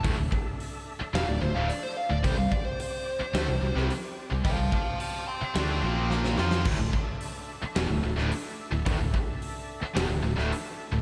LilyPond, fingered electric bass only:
\new Staff \with { instrumentName = "Fingered electric bass" } { \clef bass \time 4/4 \key d \minor \tempo 4 = 109 d,,16 d,,16 r4. e,,16 d,,16 d,,16 d,,16 r8. d,,16 | c,16 c,16 r4. d,16 c,16 c,16 c,16 r8. c,16 | c,16 c,16 r4. d,8 bes,,4 f,8 | d,,16 d,,16 r4. e,,16 d,,16 d,,16 d,,16 r8. d,,16 |
d,,16 d,,16 r4. e,,16 d,,16 d,,16 d,,16 r8. d,,16 | }